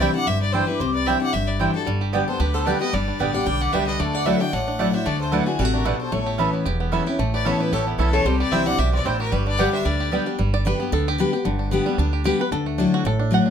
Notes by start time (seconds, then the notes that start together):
Already playing: C3
0.00 E3 G3 C4 D4 E4 C5 D5 E5 G5
0.15 D4 E4 D5 F#5
0.27 G1 G2 C5 E5
0.41 B4 D5
0.52 E3 G3 C4 D4 E4 G4 C5 D5 G5
0.67 D4 E4 G4 B4
0.80 C2 C3 G4 C5
0.94 B4 D5
1.06 E3 G3 C4 D4 E4 C5 D5 E5 G5
1.20 D4 E4 D5 F#5
1.33 G1 G2 C5 E5
1.48 B4 D5
1.59 E3 G3 C4 D4 E4 G4 C5 D5 G5
1.74 D4 E4 F#4 A4
1.87 G1 G2 G3
2.01 G4
2.13 D3 G3 B3 G4 D5 G5
2.28 B3 D4 G4 A4 C5
2.40 D2 D3 G4 B4
2.54 B3 A4 C5
2.65 D3 G3 B3 D4 G4 B4 D5 G5
2.80 B3 G4 B4 D#5
2.93 G1 G2 G3 B4 D5
3.08 D4
3.19 A1 D3 G3 B3 G4 D5 G5
3.33 B3 D4 G4 D5 F#5
3.46 B1 D3 G3 D5 G5
3.61 G4 D5 F#5
3.72 C2 D3 G3 B3 G4 B4 D5 E5 G5
3.87 D4 B4 D#5
3.99 D2 D3 A3 A4 D5
4.14 D4 D5 F#5
4.25 F#3 A3 D4 E4 F#4 A4 D5 E5 F#5
4.40 D4 E4 F#4 E5 G5
4.53 A1 A2 A3 D5 F#5
4.68 D4
4.79 F#3 A3 D4 E4 F#4 D5 F#5
4.93 D4 E4 F#4 C5 E5
5.06 D2 D3 A3 A4 D5
5.21 A4 C5
5.31 F#3 A3 D4 E4 F#4 B4 D5 F#5
5.46 D4 E4 F#4 G#4
5.59 A1 C3 G3 F#4 A4
5.65 A3
5.74 D4 F#4 A#4
5.85 B2 A3 D4 E4 F#4 B4 D5 F#5
6.00 D4 A4 C5
6.12 A1 A2 A3 A4 C#5
6.26 G4
6.38 E3 B3 C#4 E4 A4 E5 B5
6.53 E4
6.66 E1 E2 G4
6.80 B3
6.92 E3 B3 C#4 E4 A4 E5 B5
7.07 C#4 E4 G4
7.19 A1 A2 A3
7.34 G4 B4 D5
7.45 E3 B3 C#4 E4 A4 C#5 E5 B5
7.60 E4 G4 B4
7.72 A1 E2 G4 A4 C#5
7.87 B3 E4, muted resonator guitar played with a steel bar stroke
7.98 B1 E3 B3 C#4 E4 A4 E5 B5
8.13 G4 A4 C#5
8.25 C2 C3 G3 G4 C5
8.39 G4 B4 D5
8.51 C2 E3 G3 C4 D4 E4 C5 D5 E5 G5
8.66 D4 E4 D5 F#5
8.79 B1 B2 G4 C5 E5
8.93 C4 B4 D5
9.05 A1 A2 C4 D4 E4 G4 C5 D5 G5
9.20 F#4 G4 A#4
9.32 G1 G2 G3 G4 B4
9.46 D4 B4 D5
9.57 D3 G3 B3 G4 D5 F#5 G5
9.73 D4 C5 E5
9.85 D2 D3 G3 B4 D5
10.00 G4
10.11 D3 G3 B3 G4 D5 G5
10.26 B3 D4 G4
10.39 G1 G2 G3
10.54 D5
10.65 D3 G3 B3 G4 B4
10.80 B3 G4
10.92 D2 D3 A4
11.08 G4
11.18 D3 G3 B3 G4 B4
11.33 B3 G4
11.45 G1 G2 D3
11.59 D4
11.71 D3 G3 B3 G4
11.86 G3 B3 G4
11.98 D2 D3 D4
12.13 G4
12.24 D3 G3 B3 G4
12.40 B3 G4 B4
12.51 D2 D3 A4
12.66 A3
12.78 F#3 A3 D4 E4 F#4
12.94 F#4
13.05 A1 A2 A4
13.19 D4
13.31 F#3 A3 E4 F#4 F#5
13.46 D4